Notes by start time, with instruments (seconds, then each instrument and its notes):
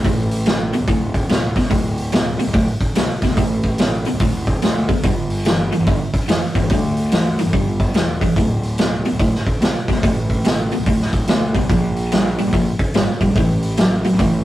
0.05 picked electric bass A1, overdriven electric guitar D2 A2, kick, open hi-hat
0.31 open hi-hat
0.46 overdriven electric guitar D2 B2, snare, open hi-hat
0.73 overdriven electric guitar D2 B2, open hi-hat
0.80 picked electric bass D1
0.87 overdriven electric guitar D2 A2, kick, open hi-hat
1.14 kick, open hi-hat
1.29 picked electric bass D1, overdriven electric guitar D2 B2, snare, open hi-hat
1.56 overdriven electric guitar D2 B2, kick, snare, open hi-hat
1.70 picked electric bass D1, overdriven electric guitar D2 A2, kick, open hi-hat
1.98 open hi-hat
2.12 overdriven electric guitar D2 B2, snare, open hi-hat
2.39 overdriven electric guitar D2 B2, open hi-hat
2.47 picked electric bass D1
2.54 overdriven electric guitar D2 A2, kick, open hi-hat
2.80 kick, open hi-hat
2.95 picked electric bass C2, overdriven electric guitar D2 B2, snare, open hi-hat
3.22 picked electric bass D1, overdriven electric guitar D2 B2, kick, snare, open hi-hat
3.31 picked electric bass D2
3.37 picked electric bass A1, overdriven electric guitar D2 A2, kick, open hi-hat
3.63 kick, open hi-hat
3.78 overdriven electric guitar D2 B2, snare, open hi-hat
4.05 overdriven electric guitar D2 B2, open hi-hat
4.14 picked electric bass D1
4.20 overdriven electric guitar D2 A2, kick, open hi-hat
4.47 kick, open hi-hat
4.62 picked electric bass D2, overdriven electric guitar D2 B2, snare, open hi-hat
4.89 overdriven electric guitar D2 B2, kick, open hi-hat
5.03 picked electric bass G1, overdriven electric guitar G2 D3, kick, open hi-hat
5.30 open hi-hat
5.45 overdriven electric guitar G2 E3, snare, open hi-hat
5.72 overdriven electric guitar G2 E3, open hi-hat
5.80 picked electric bass G1
5.86 overdriven electric guitar G2 D3, kick, open hi-hat
6.13 kick, open hi-hat
6.28 picked electric bass F1, overdriven electric guitar G2 E3, snare, open hi-hat
6.55 picked electric bass G1, overdriven electric guitar G2 E3, kick, open hi-hat
6.63 picked electric bass G2
6.70 picked electric bass D2, overdriven electric guitar G2 D3, kick, open hi-hat
6.97 open hi-hat
7.12 overdriven electric guitar G2 E3, snare, open hi-hat
7.38 overdriven electric guitar G2 E3, open hi-hat
7.46 picked electric bass G1
7.53 overdriven electric guitar G2 D3, kick, open hi-hat
7.80 kick, open hi-hat
7.94 picked electric bass E1, overdriven electric guitar G2 E3, snare, open hi-hat
8.21 overdriven electric guitar G2 E3, kick, open hi-hat
8.36 picked electric bass D1, overdriven electric guitar D2 A2, kick, open hi-hat
8.63 open hi-hat
8.78 overdriven electric guitar D2 B2, snare, open hi-hat
9.05 overdriven electric guitar D2 B2, open hi-hat
9.12 picked electric bass D1
9.19 overdriven electric guitar D2 A2, kick, open hi-hat
9.35 snare
9.47 kick, open hi-hat
9.61 picked electric bass C2, overdriven electric guitar D2 B2, snare, open hi-hat
9.88 picked electric bass D1, overdriven electric guitar D2 B2, kick, snare, open hi-hat
9.96 picked electric bass D2
10.03 picked electric bass A1, overdriven electric guitar D2 A2, kick, open hi-hat
10.30 kick, open hi-hat
10.45 overdriven electric guitar D2 B2, snare, open hi-hat
10.71 overdriven electric guitar D2 B2, open hi-hat
10.79 picked electric bass D1
10.86 overdriven electric guitar D2 A2, kick, open hi-hat
11.01 snare
11.13 kick, open hi-hat
11.27 overdriven electric guitar D2 B2, picked electric bass D2, snare, open hi-hat
11.54 picked electric bass C2, overdriven electric guitar D2 B2, kick, open hi-hat
11.69 picked electric bass A#1, overdriven electric guitar A#2 F3, kick, open hi-hat
11.96 open hi-hat
12.12 overdriven electric guitar A#2 G3, snare, open hi-hat
12.38 overdriven electric guitar A#2 G3, open hi-hat
12.46 picked electric bass A#1
12.53 overdriven electric guitar A#2 F3, kick, open hi-hat
12.79 kick, open hi-hat
12.94 picked electric bass G#1, overdriven electric guitar A#2 G3, snare, open hi-hat
13.20 picked electric bass A#1, overdriven electric guitar A#2 G3, kick, open hi-hat
13.29 picked electric bass E1
13.35 picked electric bass A1, overdriven electric guitar A2 E3, kick, open hi-hat
13.62 open hi-hat
13.77 overdriven electric guitar A2 F#3, snare, open hi-hat
14.04 overdriven electric guitar A2 F#3, open hi-hat
14.12 picked electric bass A1
14.19 overdriven electric guitar A2 E3, kick, open hi-hat